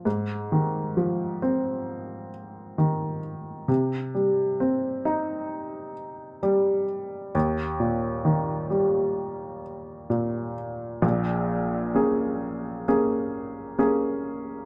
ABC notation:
X:1
M:4/4
L:1/8
Q:1/4=66
K:Bbdor
V:1 name="Upright piano" clef=bass
A,, E, F, C3 E,2 | C, G, C E3 G,2 | E,, B,, E, G,3 B,,2 | [B,,,B,,]2 [B,DA]2 [B,DA]2 [B,DA]2 |]